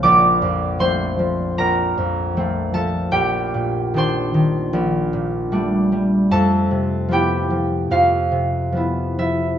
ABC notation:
X:1
M:4/4
L:1/8
Q:1/4=76
K:Flyd
V:1 name="Harp"
[_Bdd']2 [cc']2 [B_b]3 [Aa] | [Gg]2 [cc']4- [cc'] z | [Aa]2 [Gg]2 [Ff]3 [Ee] |]
V:2 name="Harp" clef=bass
[_B,,,F,_B,C] F,, [F,A,C] F, B,,, F,, [F,A,C] F, | _B,,, _B,, [_E,CD] E, B,,, B,, [G,A,D] G, | F,, C, [F,B,E] F, F,, C, [F,B,E] F, |]